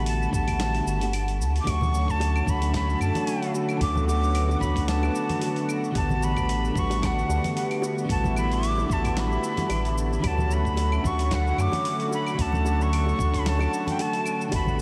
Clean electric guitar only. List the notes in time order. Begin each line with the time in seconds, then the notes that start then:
Already playing: D3 G3 A3 B3 F#4
0.29 D3 G3 A3
0.35 B3 F#4
1.00 D3 G3 A3 B3 F#4
1.64 D3 F#3 A3
1.70 C#4 F#4
2.44 D3 F#3 A3
2.50 C#4 F#4
3.77 D3 F#3 A3
3.83 C#4 F#4
4.58 D3 F#3 A3
4.64 C#4 F#4
5.92 D3 G3 A3
5.97 B3 F#4
6.72 D3 G3
6.76 A3 B3 F#4
8.05 D3 G3
8.09 A3 B3 F#4
8.85 D3 G3 A3
8.90 B3 F#4
9.55 D3 G3 A3 B3 F#4
10.19 D3 F#3 A3
10.25 C#4 F#4
11.00 D3 F#3 A3
11.06 C#4 F#4
12.34 D3 F#3
12.38 A3 C#4 F#4
13.15 D3 F#3 A3
13.20 C#4 F#4
14.49 D3 G3 A3
14.54 B3 F#4